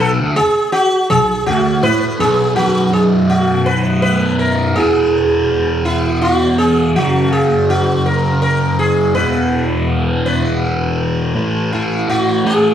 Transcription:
0.00 0.19 B1 medium
0.00 0.10 A4 medium
0.20 0.37 D2 medium
0.36 0.72 G#4 medium
0.72 1.09 F#4 loud
1.10 1.40 B1 medium
1.10 1.44 G#4 loud
1.46 1.83 D2 loud
1.46 1.85 F#4 medium
1.83 2.19 A2 loud
1.83 2.53 B4 medium
2.20 2.55 B1 loud
2.20 2.54 G#4 medium
2.56 4.74 B1 medium
2.56 4.75 F#2 medium
2.56 4.75 B2 medium
2.56 2.90 F#4 loud
2.93 3.03 G#4 medium
3.30 3.68 F#4 medium
3.66 4.00 B4 medium
4.02 4.37 B4 loud
4.39 4.77 A#4 medium
4.76 6.94 E2 medium
4.76 6.94 B2 medium
4.76 6.95 E3 medium
4.76 5.85 G#4 medium
5.85 6.20 E4 medium
6.22 6.56 F#4 medium
6.58 6.95 G#4 medium
6.96 9.14 F#2 medium
6.96 9.14 C#3 medium
6.96 9.15 F#3 medium
6.96 7.32 F#4 medium
7.33 7.67 G#4 medium
7.70 8.04 F#4 medium
8.06 8.41 A#4 medium
8.42 8.76 A#4 medium
8.79 9.14 G#4 medium
9.15 11.33 E2 medium
9.15 11.34 B2 medium
9.15 11.34 E3 medium
9.15 10.25 B4 medium
10.26 11.04 B4 medium
11.35 12.07 A2 medium
11.35 11.73 E3 medium
11.35 11.72 A3 medium
11.73 12.09 E3 medium
11.73 12.10 A3 medium
11.73 12.09 E4 medium
12.08 12.74 A2 medium
12.08 12.46 E3 medium
12.08 12.45 A3 medium
12.08 12.43 F#4 medium
12.45 12.74 E3 medium
12.45 12.74 A3 medium
12.45 12.74 G#4 medium

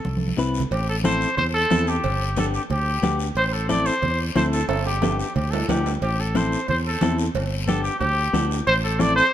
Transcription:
0.00 0.34 A4 medium
0.05 0.32 C2 medium
0.05 high conga medium
0.05 long guiro medium
0.17 high conga medium
0.28 high conga medium
0.38 0.65 C2 medium
0.38 0.61 C4 medium
0.38 0.62 E4 medium
0.38 0.62 B4 medium
0.38 short guiro medium
0.54 short guiro medium
0.60 low conga medium
0.71 1.24 A1 loud
0.71 0.87 G4 medium
0.71 cowbell loud
0.71 high conga soft
0.71 long guiro medium
0.89 0.96 A4 medium
1.04 1.28 C4 medium
1.04 1.28 E4 medium
1.04 1.28 A4 medium
1.04 1.36 C5 medium
1.04 cowbell medium
1.04 high conga medium
1.04 short guiro medium
1.21 short guiro medium
1.37 1.64 E2 medium
1.37 1.45 C5 medium
1.37 cowbell medium
1.37 high conga soft
1.37 low conga medium
1.37 long guiro medium
1.54 1.90 A4 loud
1.70 1.98 E2 loud
1.70 1.94 C4 medium
1.70 1.94 E4 medium
1.70 1.95 A4 medium
1.70 cowbell medium
1.70 high conga medium
1.70 low timbale medium
1.70 short guiro medium
1.87 2.38 G4 medium
1.87 short guiro medium
2.04 2.57 G1 loud
2.04 cowbell loud
2.04 high conga soft
2.04 low conga medium
2.04 long guiro medium
2.37 2.61 B3 medium
2.37 2.61 D4 medium
2.37 2.61 G4 medium
2.37 2.46 A4 medium
2.37 cowbell medium
2.37 high conga medium
2.37 short guiro medium
2.54 2.62 G4 medium
2.54 short guiro medium
2.70 2.97 D2 medium
2.70 3.17 G4 loud
2.70 cowbell medium
2.70 high conga soft
2.70 low conga medium
2.70 long guiro medium
3.02 3.29 D2 medium
3.02 3.27 B3 medium
3.02 3.27 D4 medium
3.02 3.27 G4 medium
3.02 cowbell medium
3.02 high conga medium
3.02 short guiro medium
3.19 short guiro medium
3.35 3.89 A1 loud
3.35 3.42 C5 medium
3.35 cowbell loud
3.35 high conga soft
3.35 long guiro medium
3.47 3.55 C5 medium
3.53 3.69 A4 medium
3.69 3.93 C4 medium
3.69 3.93 E4 medium
3.69 3.93 A4 medium
3.69 3.88 D5 medium
3.69 cowbell medium
3.69 high conga medium
3.69 short guiro medium
3.86 4.20 C5 loud
3.86 short guiro medium
4.02 4.29 E2 medium
4.02 cowbell medium
4.02 high conga soft
4.02 low conga medium
4.02 long guiro medium
4.35 4.62 D2 loud
4.35 4.59 C4 medium
4.35 4.60 E4 medium
4.35 4.60 A4 medium
4.35 4.44 C5 medium
4.35 cowbell medium
4.35 high conga medium
4.35 low timbale medium
4.35 short guiro medium
4.53 4.68 A4 medium
4.53 short guiro medium
4.68 5.22 G1 loud
4.68 4.84 A4 medium
4.68 cowbell loud
4.68 high conga soft
4.68 high timbale medium
4.68 long guiro medium
4.86 5.17 G4 medium
4.86 high timbale medium
5.02 5.26 B3 medium
5.02 5.26 D4 medium
5.02 5.26 G4 medium
5.02 cowbell medium
5.02 high conga medium
5.02 high timbale medium
5.02 short guiro medium
5.19 5.35 G4 medium
5.19 short guiro medium
5.35 5.62 D2 medium
5.35 5.52 G4 medium
5.35 cowbell medium
5.35 high conga soft
5.35 low conga medium
5.35 long guiro medium
5.51 5.68 A4 medium
5.51 low timbale medium
5.69 5.96 D2 medium
5.69 5.92 B3 medium
5.69 5.93 D4 medium
5.69 5.93 G4 medium
5.69 cowbell medium
5.69 high conga medium
5.69 low conga medium
5.69 low timbale loud
5.69 short guiro medium
5.86 low timbale medium
5.86 short guiro medium
6.01 6.55 A1 loud
6.01 6.21 G4 medium
6.01 cowbell medium
6.01 high conga soft
6.01 long guiro medium
6.20 6.38 A4 medium
6.35 6.58 C4 medium
6.35 6.59 E4 medium
6.35 6.59 A4 medium
6.35 6.69 C5 medium
6.35 cowbell medium
6.35 high conga medium
6.35 short guiro medium
6.52 short guiro medium
6.68 6.95 E2 medium
6.68 6.77 C5 medium
6.68 cowbell medium
6.68 high conga soft
6.68 low conga medium
6.68 long guiro medium
6.87 7.17 A4 medium
7.01 7.28 E2 loud
7.01 7.25 C4 medium
7.01 7.25 E4 medium
7.01 7.25 A4 medium
7.01 cowbell medium
7.01 high conga medium
7.01 low timbale medium
7.01 short guiro medium
7.18 short guiro medium
7.35 7.88 G1 loud
7.35 cowbell loud
7.35 high conga soft
7.35 low conga medium
7.35 long guiro medium
7.67 7.91 B3 medium
7.67 7.91 D4 medium
7.67 7.91 G4 medium
7.67 7.83 A4 medium
7.67 cowbell medium
7.67 high conga medium
7.67 short guiro medium
7.83 7.99 G4 medium
7.83 short guiro medium
7.99 8.27 D2 medium
7.99 8.46 G4 medium
7.99 cowbell medium
7.99 high conga soft
7.99 low conga medium
7.99 long guiro medium
8.33 8.60 D2 loud
8.33 8.57 B3 medium
8.33 8.57 D4 medium
8.33 8.57 G4 medium
8.33 cowbell medium
8.33 high conga medium
8.33 low timbale medium
8.33 short guiro medium
8.51 short guiro medium
8.67 9.20 A1 loud
8.67 8.74 C5 loud
8.67 cowbell loud
8.67 high conga soft
8.67 long guiro medium
8.84 9.02 A4 medium
8.99 9.23 C4 medium
8.99 9.23 E4 medium
8.99 9.23 A4 medium
8.99 9.15 D5 loud
8.99 cowbell medium
8.99 high conga medium
8.99 short guiro medium
9.16 9.33 C5 loud
9.16 short guiro medium

